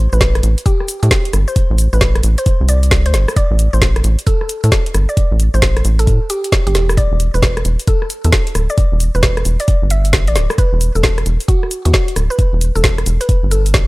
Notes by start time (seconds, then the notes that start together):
0.13 A1 B4, cabasa
0.21 kick, snare, cabasa
0.35 cross-stick, closed hi-hat
0.43 A1, closed hi-hat, cabasa
0.58 closed hi-hat, cabasa
0.66 G4, kick, closed hi-hat, cabasa
0.80 cross-stick
0.88 closed hi-hat, cabasa
1.03 A2 G4, closed hi-hat, cabasa
1.11 kick, snare, cabasa
1.25 closed hi-hat
1.33 G1, cross-stick, closed hi-hat, cabasa
1.48 C5, cabasa
1.56 kick, closed hi-hat, cabasa
1.71 A1
1.78 closed hi-hat, cabasa
1.93 A1 B4, cabasa
2.01 kick, snare, cabasa
2.15 cross-stick, closed hi-hat
2.23 A1, closed hi-hat, cabasa
2.38 C5, closed hi-hat, cabasa
2.46 kick, closed hi-hat, cabasa
2.61 C2
2.69 D5, closed hi-hat, cabasa
2.83 closed hi-hat, cabasa
2.91 kick, snare, cabasa
3.06 D2 C5, closed hi-hat
3.14 G1, snare, closed hi-hat, cabasa
3.28 cross-stick, cabasa
3.36 D5, kick, closed hi-hat, cabasa
3.51 A1
3.59 closed hi-hat, cabasa
3.73 A1 C5, cabasa
3.82 kick, snare, cabasa
3.96 cross-stick, closed hi-hat
4.04 A1, closed hi-hat, cabasa
4.19 closed hi-hat, cabasa
4.27 A4, kick, closed hi-hat, cabasa
4.41 cross-stick
4.49 closed hi-hat, cabasa
4.64 A2 A4, closed hi-hat, cabasa
4.72 kick, snare, cabasa
4.86 closed hi-hat
4.94 G1, cross-stick, closed hi-hat, cabasa
5.09 D5, cabasa
5.17 kick, closed hi-hat, cabasa
5.32 A1
5.40 closed hi-hat, cabasa
5.54 A1 C5, cabasa
5.62 kick, snare, cabasa
5.77 cross-stick, closed hi-hat
5.85 A1, closed hi-hat, cabasa
5.99 A4, closed hi-hat, cabasa
6.07 A2, kick, closed hi-hat, cabasa
6.30 G4, closed hi-hat, cabasa
6.44 closed hi-hat, cabasa
6.52 kick, snare, cabasa
6.67 G1 G4, closed hi-hat
6.75 E1, snare, closed hi-hat, cabasa
6.89 cross-stick, cabasa
6.97 D5, kick, closed hi-hat, cabasa
7.12 E1
7.20 closed hi-hat, cabasa
7.34 E1 B4, cabasa
7.42 kick, snare, cabasa
7.57 cross-stick, closed hi-hat
7.65 E1, closed hi-hat, cabasa
7.80 closed hi-hat, cabasa
7.87 A4, kick, closed hi-hat, cabasa
8.02 cross-stick
8.10 closed hi-hat, cabasa
8.24 E2 A4, closed hi-hat, cabasa
8.33 kick, snare, cabasa
8.47 closed hi-hat
8.55 D1, cross-stick, closed hi-hat, cabasa
8.70 D5, cabasa
8.78 kick, closed hi-hat, cabasa
8.92 E1
9.00 closed hi-hat, cabasa
9.15 E1 B4, cabasa
9.23 kick, snare, cabasa
9.37 cross-stick, closed hi-hat
9.45 E1, closed hi-hat, cabasa
9.60 D5, closed hi-hat, cabasa
9.68 kick, closed hi-hat, cabasa
9.82 G1
9.90 E5, closed hi-hat, cabasa
10.05 closed hi-hat, cabasa
10.13 kick, snare, cabasa
10.27 A1 D5, closed hi-hat
10.36 D1, snare, closed hi-hat, cabasa
10.50 cross-stick, cabasa
10.58 B4, kick, closed hi-hat, cabasa
10.73 E1
10.81 closed hi-hat, cabasa
10.95 E1 A4, cabasa
11.03 kick, snare, cabasa
11.18 cross-stick, closed hi-hat
11.26 E1, closed hi-hat, cabasa
11.40 closed hi-hat, cabasa
11.48 F#4, kick, closed hi-hat, cabasa
11.63 cross-stick
11.71 closed hi-hat, cabasa
11.85 E2 F#4, closed hi-hat, cabasa
11.94 kick, snare, cabasa
12.08 closed hi-hat
12.16 D1, cross-stick, closed hi-hat, cabasa
12.30 B4, cabasa
12.39 kick, closed hi-hat, cabasa
12.53 E1
12.61 closed hi-hat, cabasa
12.75 E1 A4, cabasa
12.84 kick, snare, cabasa
12.98 cross-stick, closed hi-hat
13.06 E1, closed hi-hat, cabasa
13.21 B4, closed hi-hat, cabasa
13.29 kick, closed hi-hat, cabasa
13.43 G1
13.51 A4, closed hi-hat, cabasa
13.66 closed hi-hat, cabasa
13.74 kick, snare, cabasa